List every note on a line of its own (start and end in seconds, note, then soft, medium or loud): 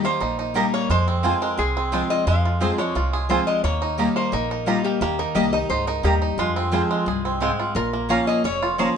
0.00 0.18 D#3 loud
0.00 0.20 D#4 medium
0.00 0.20 G4 medium
0.05 0.52 A#3 medium
0.05 0.21 D#4 soft
0.05 0.52 C5 loud
0.20 0.64 A#1 medium
0.20 0.86 A#2 medium
0.20 0.38 D#4 medium
0.39 0.55 D#4 medium
0.54 0.87 G3 medium
0.54 0.88 A#3 medium
0.54 0.64 A#3 medium
0.54 0.88 D#4 medium
0.54 0.90 D#4 medium
0.54 0.65 G4 medium
0.54 0.88 G4 medium
0.54 0.72 A#4 medium
0.54 0.65 D#5 medium
0.54 0.65 A#5 loud
0.74 0.90 A#3 medium
0.74 0.91 C#5 loud
0.90 1.32 F2 medium
0.90 1.55 F2 medium
0.90 1.42 G#3 medium
0.90 1.38 C5 loud
1.08 1.76 C4 medium
1.23 1.56 F3 medium
1.23 1.57 G#3 medium
1.23 1.33 C4 medium
1.23 1.57 C4 loud
1.23 1.33 F4 medium
1.23 1.57 F4 loud
1.23 1.73 F4 medium
1.23 1.33 C5 loud
1.23 1.33 G#5 loud
1.42 1.89 G#3 medium
1.42 1.59 A#4 medium
1.57 2.01 C2 medium
1.57 2.23 C3 medium
1.57 2.12 G#4 loud
1.57 2.07 G#4 medium
1.77 2.24 C4 medium
1.92 2.25 F3 medium
1.92 2.25 G#3 medium
1.92 2.26 G#3 medium
1.92 2.01 C4 medium
1.92 2.25 C4 medium
1.92 2.02 F4 medium
1.92 2.26 F4 medium
1.92 2.02 C5 medium
1.92 2.02 G#5 medium
2.10 2.44 F4 medium
2.10 2.26 D#5 loud
2.27 2.69 F2 medium
2.27 2.75 G#3 medium
2.27 2.80 F5 loud
2.45 2.93 F4 medium
2.60 2.77 F3 medium
2.60 2.78 G#3 medium
2.60 2.70 C4 medium
2.60 2.78 C4 medium
2.60 2.70 F4 medium
2.60 2.77 F4 medium
2.60 3.10 G#4 medium
2.60 2.70 C5 medium
2.60 2.71 G#5 medium
2.78 3.26 G#3 medium
2.78 2.95 C4 soft
2.78 2.94 F4 medium
2.78 3.29 C#5 loud
2.95 3.38 C2 medium
2.95 3.60 C3 medium
2.95 3.29 F4 medium
3.13 3.61 G#4 medium
3.29 3.62 F3 medium
3.29 3.62 G#3 medium
3.29 3.39 C4 medium
3.29 3.62 C4 medium
3.29 3.39 F4 loud
3.29 3.64 F4 medium
3.29 3.63 F4 medium
3.29 3.47 C5 medium
3.29 3.39 C5 medium
3.29 3.39 G#5 loud
3.47 3.64 G#3 medium
3.47 3.63 D#5 loud
3.64 4.06 D#2 medium
3.64 4.29 D#3 medium
3.64 4.16 A#3 medium
3.64 4.16 C#5 loud
3.82 3.99 D#4 medium
3.98 4.30 G3 medium
3.98 4.07 A#3 medium
3.98 4.31 A#3 loud
3.98 4.31 D#4 medium
3.98 4.32 D#4 medium
3.98 4.08 G4 medium
3.98 4.31 G4 loud
3.98 4.08 D#5 medium
3.98 4.08 A#5 loud
4.16 4.64 A#3 medium
4.16 4.32 C5 medium
4.32 4.75 A#1 medium
4.32 4.97 A#2 medium
4.32 4.50 D#4 medium
4.32 4.65 A#4 loud
4.51 4.66 D#4 medium
4.66 4.99 G3 medium
4.66 4.76 A#3 medium
4.66 4.99 A#3 medium
4.66 5.00 D#4 loud
4.66 5.15 D#4 medium
4.66 4.84 F4 medium
4.66 4.76 G4 medium
4.66 5.00 G4 loud
4.66 4.76 D#5 medium
4.66 4.76 A#5 loud
4.84 5.01 A#3 medium
4.84 5.01 G4 medium
5.01 5.22 D#2 loud
5.01 5.66 D#3 loud
5.01 5.50 A#3 medium
5.01 5.19 G4 medium
5.19 5.35 D#4 medium
5.19 5.36 A#4 medium
5.35 5.64 C2 medium
5.35 5.52 G3 medium
5.35 5.44 A#3 medium
5.35 5.52 A#3 loud
5.35 5.53 D#4 medium
5.35 5.52 D#4 loud
5.35 5.44 G4 loud
5.35 5.51 G4 loud
5.35 5.52 D#5 medium
5.35 5.45 D#5 medium
5.35 5.45 A#5 medium
5.52 5.69 D#4 medium
5.52 5.70 D#4 soft
5.52 5.69 G4 medium
5.52 5.58 D#5 medium
5.69 5.99 C#2 medium
5.69 6.02 G#2 medium
5.69 5.86 D#4 medium
5.69 5.86 C5 medium
5.87 6.03 D#4 medium
5.87 6.05 A#4 medium
6.03 6.33 D#2 medium
6.03 6.36 G2 medium
6.03 6.13 A#3 medium
6.03 6.21 D#4 medium
6.03 6.13 G4 medium
6.03 6.40 G4 medium
6.03 6.13 D#5 medium
6.03 6.14 A#5 loud
6.22 6.38 D#4 medium
6.38 6.80 F2 medium
6.38 7.03 F2 medium
6.38 6.87 G#3 medium
6.38 7.38 F4 medium
6.56 7.04 C4 medium
6.71 7.05 F3 medium
6.71 7.05 G#3 loud
6.71 6.82 C4 medium
6.71 7.05 C4 medium
6.71 6.82 F4 medium
6.71 7.06 F4 loud
6.71 7.22 F4 medium
6.71 6.82 C5 loud
6.71 6.82 G#5 medium
6.91 7.38 G#3 medium
7.06 7.49 C2 medium
7.06 7.39 G2 medium
7.06 7.56 G#4 medium
7.25 7.73 C4 medium
7.40 7.74 G#2 medium
7.40 7.76 G#3 medium
7.40 7.50 C4 medium
7.40 7.51 F4 medium
7.40 7.51 C5 medium
7.40 7.51 G#5 medium
7.60 7.75 F4 medium
7.75 8.18 A#1 loud
7.75 8.41 A#2 loud
7.75 8.62 F4 medium
7.75 8.08 A#4 loud
7.93 8.82 A#3 medium
8.09 8.42 F3 medium
8.09 8.42 A#3 medium
8.09 8.19 C#4 medium
8.09 8.43 C#4 loud
8.09 8.44 C#4 medium
8.09 8.19 F4 medium
8.09 8.43 F4 medium
8.09 8.19 C#5 medium
8.09 8.26 F5 loud
8.09 8.19 A#5 loud
8.27 8.76 G#4 medium
8.27 8.45 D#5 loud
8.44 8.87 F1 medium
8.44 8.97 F2 medium
8.44 8.93 C#4 medium
8.44 8.79 C#5 loud
8.63 8.97 F4 medium
8.78 8.97 F3 medium
8.78 8.97 A#3 medium
8.78 8.88 C#4 medium
8.78 8.97 C#4 medium
8.78 8.88 F4 medium
8.78 8.97 F4 medium
8.78 8.97 G#4 medium
8.78 8.95 C5 medium
8.78 8.88 C#5 medium
8.78 8.88 A#5 medium